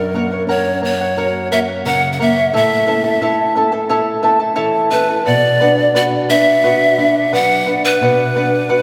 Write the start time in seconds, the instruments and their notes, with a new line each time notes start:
Already playing: nylon-string guitar F#2, charango A#4 C#5 F#5, pan flute A#4
0.14 nylon-string guitar A#3, charango A#4 C#5 F#5
0.32 charango C#5 F#5
0.47 nylon-string guitar C#4, charango A#4 C#5 F#5, pan flute C#5
0.82 nylon-string guitar A#3, charango A#4 C#5 F#5, pan flute C#5
1.01 charango C#5 F#5
1.17 nylon-string guitar F#4, charango A#4 C#5 F#5
1.51 nylon-string guitar A#3, charango A#4 C#5 F#5, pan flute E5
1.68 charango C#5 F#5
1.85 nylon-string guitar C#3, charango A#4 C#5 F#5, pan flute F#5
2.12 pan flute F#5
2.19 nylon-string guitar A#3, charango A#4 C#5 F#5, pan flute E5
2.36 charango C#5 F#5
2.53 nylon-string guitar A2, charango E4 A4 C#5 E5 A5, pan flute E5
2.87 nylon-string guitar C#4, charango E4 A4 E5 A5
3.04 charango E4 A4 A5
3.21 nylon-string guitar E4, charango E4 A4 C#5 E5 A5
3.55 nylon-string guitar C#4, charango E4 A4 E5 A5
3.72 charango E4 A4 A5
3.89 charango E4 A4 C#5 E5 A5, nylon-string guitar A4
4.23 nylon-string guitar C#4, charango E4 A4 E5 A5
4.40 charango E4 A4 A5
4.56 nylon-string guitar E3, charango E4 A4 C#5 E5 A5
4.91 nylon-string guitar C#4, charango E4 A4 E5 A5, pan flute B4
5.09 charango E4 A4 A5
5.25 nylon-string guitar B2, charango B4 D5 F#5, pan flute D5
5.60 nylon-string guitar D4, charango B4 D5 F#5
5.78 charango D5 F#5
5.95 nylon-string guitar F#4, charango B4 D5 F#5, pan flute D5
6.29 nylon-string guitar D4, charango B4 D5 F#5, pan flute E5
6.46 charango D5 F#5
6.64 nylon-string guitar F#4, charango B4 D5 F#5
6.98 nylon-string guitar D4, charango B4 D5 F#5
7.15 charango D5 F#5
7.32 nylon-string guitar F#3, charango B4 D5 F#5, pan flute F#5
7.66 nylon-string guitar D4, charango B4 D5 F#5
7.84 pan flute B4, charango D5 F#5
8.01 nylon-string guitar B2, charango B4 D5 F#5
8.36 nylon-string guitar D4, charango B4 D5 F#5
8.53 charango D5 F#5
8.69 nylon-string guitar F#4, charango B4 D5 F#5